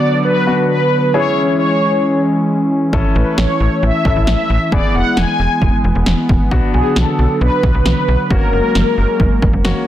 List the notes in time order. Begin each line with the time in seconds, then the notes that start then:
Already playing: D3 F#3 B3 D4 F#4 D5
0.25 B4
0.47 B3 D4 F#4
0.69 B4
1.14 E3 G#3 C#4 E4 G#4 C#5
1.59 C#5
2.93 A1 A3 C#4 E4 A4, kick
3.15 A1 B4
3.38 A1 C#5, snare
3.60 A1
3.83 A1 E5
4.05 A1 C#4 E4 A4, kick
4.16 A1
4.27 A1 E5, snare
4.50 A1
4.72 E1 G#3 B3 E4 G#4 D5, kick
4.94 E1 F#5
5.17 E1 G#5, snare
5.39 E1
5.62 E1, kick
5.84 E1
5.95 E1
6.06 E1, snare
6.29 E1, kick
6.51 B1 D3 F#3 B3 D4 F#4, kick
6.74 B1 G#4
6.96 B1 A4, snare
7.19 B1
7.41 B1 B4
7.63 B1, kick
7.75 B1
7.86 B1 B4, snare
8.08 B1
8.30 F#1 G#3 A#3 C#4 F#4 A#4, kick
8.53 F#1
8.75 F#1, snare
8.98 F#1
9.20 F#1, kick
9.42 F#1, kick
9.53 F#1
9.65 F#1 A#3 C#4 F#4, snare